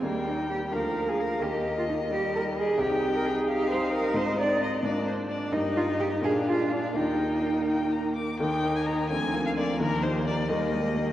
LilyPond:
<<
  \new Staff \with { instrumentName = "Violin" } { \time 6/8 \key ees \major \tempo 4. = 87 g''4. f''4. | ees''2. | g''4. f''4. | ees''4. d''8 c''8 d''8 |
ees''4. f''4. | g''4. g''8 bes''8 d'''8 | g''8. aes''16 bes''8 aes''8. f''16 d''8 | bes'8 c''8 d''8 ees''4. | }
  \new Staff \with { instrumentName = "Cello" } { \time 6/8 \key ees \major bes8 ees'8 g'8 bes'8. aes'16 bes'8 | g'8. f'16 ees'8 g'8 bes'8 aes'8 | g'8. bes'16 aes'8 g'8 c''8 bes'8 | c''8 d''8 ees''8 r4. |
ees'8 f'8 g'8 aes'8 f'8 d'8 | ees'2~ ees'8 r8 | ees4. f4.~ | f4. g8 aes8 bes8 | }
  \new Staff \with { instrumentName = "Grand piano" } { \time 6/8 \key ees \major <ees, bes ees' g'>4. <d, bes f'>4. | <ees, bes ees' g'>2. | <c, c' ees' g'>2. | <aes, c' ees' f'>4. <aes, bes d' f'>4. |
<g, bes ees' g'>4. <bes, bes d' f'>4. | <ees, bes ees' g'>2. | <ees, ees>8 <bes ees' bes'>8 <bes ees' bes'>8 <d, d>8 <bes f' bes'>8 <bes f' bes'>8 | <ees, ees>8 <bes ees' g'>8 <bes ees' g'>8 <ees, ees>8 <bes ees' g'>8 <bes ees' g'>8 | }
  \new Staff \with { instrumentName = "Viola" } { \time 6/8 \key ees \major g4. f4. | bes4. g4. | ees'2.~ | ees'4. d'4. |
ees'4. d'4. | bes2~ bes8 r8 | ees'4. c'4. | bes4. bes4. | }
>>